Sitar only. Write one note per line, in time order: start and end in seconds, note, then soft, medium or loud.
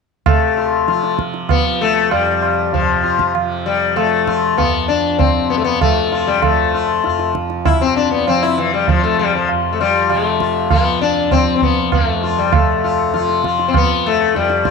0.27 1.15 A3 medium
0.57 0.86 F4 soft
0.89 1.17 F4 soft
1.50 1.82 B3 medium
1.81 2.11 A3 medium
2.11 2.74 G3 medium
2.74 3.31 F3 medium
3.04 3.32 F4 soft
3.66 3.96 G3 medium
3.96 4.60 A3 medium
4.27 4.56 F4 soft
4.57 4.88 B3 medium
4.88 5.18 D4 medium
5.19 5.50 C4 medium
5.50 5.57 B3 medium
5.58 5.64 A3 medium
5.64 5.81 B3 medium
5.81 6.29 A3 medium
6.12 6.41 F4 soft
6.27 6.42 G3 medium
6.43 7.31 A3 medium
6.74 7.02 F4 soft
7.05 7.33 F4 soft
7.65 7.81 E4 medium
7.81 7.96 C4 medium
7.96 8.10 D4 medium
8.11 8.27 B3 medium
8.28 8.43 C4 medium
8.42 8.58 E4 medium
8.58 8.73 E3 medium
8.74 8.88 G3 medium
8.89 9.03 F3 medium
9.04 9.19 A3 medium
9.19 9.34 G3 medium
9.35 9.48 F3 medium
9.73 9.79 A3 soft
9.80 10.11 G3 medium
9.80 10.08 F4 soft
10.10 10.25 G#3 medium
10.10 10.38 F4 soft
10.25 10.71 A3 medium
10.41 10.69 F4 soft
10.71 11.01 B3 medium
10.71 10.99 F4 soft
11.01 11.32 D4 medium
11.32 11.54 C4 medium
11.56 11.62 C4 medium
11.63 11.93 B3 medium
11.93 12.39 A3 medium
12.23 12.51 F4 soft
12.38 12.53 G3 medium
12.54 13.40 A3 medium
12.84 13.12 F4 soft
13.14 13.42 F4 soft
13.45 13.72 F4 soft
13.68 13.75 C4 medium
13.77 14.06 B3 medium
14.06 14.36 A3 medium
14.36 14.71 G3 medium
14.65 14.71 F4 soft